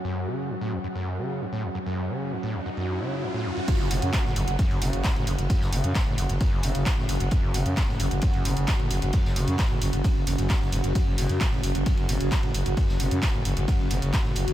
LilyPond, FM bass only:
\new Staff \with { instrumentName = "FM bass" } { \clef bass \time 4/4 \key fis \minor \tempo 4 = 132 r1 | r1 | r16 fis,,16 fis,,16 fis,16 r16 fis,,16 fis,,16 fis,,16 r16 fis,,16 fis,,16 fis,,16 r16 fis,,16 fis,,16 fis,,16 | r16 fis,,16 fis,,16 fis,16 r16 fis,,16 fis,,16 fis,,16 r16 fis,,16 fis,,16 fis,,16 r16 fis,,16 fis,,16 fis,,16 |
r16 fis,,16 fis,,16 fis,16 r16 fis,,16 fis,,16 fis,,16 r16 fis,,16 fis,,16 fis,,16 r16 fis,,16 fis,,16 fis,,16 | r16 fis,,16 fis,,16 fis,16 r16 fis,,16 fis,,16 fis,,16 r16 fis,,16 fis,,16 fis,,16 r16 fis,,16 fis,,16 fis,,16 | r16 fis,,16 fis,,16 fis,16 r16 fis,,16 fis,,16 fis,,16 r16 fis,,16 fis,,16 fis,,16 r16 fis,,16 fis,,16 fis,,16 | r16 fis,,16 fis,,16 fis,16 r16 fis,,16 fis,,16 fis,,16 r16 fis,,16 fis,,16 fis,,16 r16 fis,,16 fis,,16 fis,,16 | }